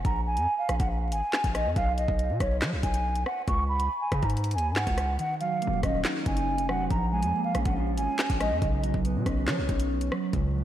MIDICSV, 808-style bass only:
0, 0, Header, 1, 2, 480
1, 0, Start_track
1, 0, Tempo, 428571
1, 54, Time_signature, 4, 2, 24, 8
1, 11917, End_track
2, 0, Start_track
2, 0, Title_t, "808-style bass"
2, 0, Program_c, 0, 38
2, 54, Note_on_c, 0, 34, 105
2, 414, Note_on_c, 0, 41, 100
2, 430, Note_off_c, 0, 34, 0
2, 528, Note_off_c, 0, 41, 0
2, 774, Note_on_c, 0, 34, 102
2, 889, Note_off_c, 0, 34, 0
2, 894, Note_on_c, 0, 34, 108
2, 1254, Note_on_c, 0, 32, 98
2, 1270, Note_off_c, 0, 34, 0
2, 1367, Note_off_c, 0, 32, 0
2, 1614, Note_on_c, 0, 34, 105
2, 1854, Note_on_c, 0, 41, 96
2, 1870, Note_off_c, 0, 34, 0
2, 1968, Note_off_c, 0, 41, 0
2, 1973, Note_on_c, 0, 35, 110
2, 2319, Note_off_c, 0, 35, 0
2, 2333, Note_on_c, 0, 35, 102
2, 2574, Note_on_c, 0, 47, 96
2, 2590, Note_off_c, 0, 35, 0
2, 2687, Note_off_c, 0, 47, 0
2, 2693, Note_on_c, 0, 35, 105
2, 2934, Note_on_c, 0, 54, 98
2, 2950, Note_off_c, 0, 35, 0
2, 3054, Note_on_c, 0, 35, 99
2, 3070, Note_off_c, 0, 54, 0
2, 3167, Note_off_c, 0, 35, 0
2, 3174, Note_on_c, 0, 35, 107
2, 3635, Note_off_c, 0, 35, 0
2, 3893, Note_on_c, 0, 37, 110
2, 4354, Note_off_c, 0, 37, 0
2, 4612, Note_on_c, 0, 49, 102
2, 4728, Note_off_c, 0, 49, 0
2, 4734, Note_on_c, 0, 44, 108
2, 5093, Note_on_c, 0, 39, 103
2, 5110, Note_off_c, 0, 44, 0
2, 5273, Note_on_c, 0, 44, 102
2, 5290, Note_off_c, 0, 39, 0
2, 5444, Note_off_c, 0, 44, 0
2, 5453, Note_on_c, 0, 37, 101
2, 5799, Note_off_c, 0, 37, 0
2, 6353, Note_on_c, 0, 27, 98
2, 6524, Note_off_c, 0, 27, 0
2, 6532, Note_on_c, 0, 27, 101
2, 6763, Note_off_c, 0, 27, 0
2, 7014, Note_on_c, 0, 30, 108
2, 7373, Note_on_c, 0, 29, 97
2, 7390, Note_off_c, 0, 30, 0
2, 7715, Note_off_c, 0, 29, 0
2, 7733, Note_on_c, 0, 34, 105
2, 8093, Note_on_c, 0, 41, 96
2, 8110, Note_off_c, 0, 34, 0
2, 8207, Note_off_c, 0, 41, 0
2, 8453, Note_on_c, 0, 34, 103
2, 8569, Note_off_c, 0, 34, 0
2, 8574, Note_on_c, 0, 34, 104
2, 8933, Note_on_c, 0, 32, 100
2, 8950, Note_off_c, 0, 34, 0
2, 9047, Note_off_c, 0, 32, 0
2, 9293, Note_on_c, 0, 34, 110
2, 9533, Note_on_c, 0, 41, 100
2, 9550, Note_off_c, 0, 34, 0
2, 9647, Note_off_c, 0, 41, 0
2, 9653, Note_on_c, 0, 35, 108
2, 9999, Note_off_c, 0, 35, 0
2, 10013, Note_on_c, 0, 35, 107
2, 10253, Note_on_c, 0, 47, 100
2, 10270, Note_off_c, 0, 35, 0
2, 10367, Note_off_c, 0, 47, 0
2, 10372, Note_on_c, 0, 35, 104
2, 10613, Note_on_c, 0, 54, 101
2, 10630, Note_off_c, 0, 35, 0
2, 10733, Note_on_c, 0, 35, 96
2, 10750, Note_off_c, 0, 54, 0
2, 10847, Note_off_c, 0, 35, 0
2, 10853, Note_on_c, 0, 35, 108
2, 11314, Note_off_c, 0, 35, 0
2, 11573, Note_on_c, 0, 37, 109
2, 11917, Note_off_c, 0, 37, 0
2, 11917, End_track
0, 0, End_of_file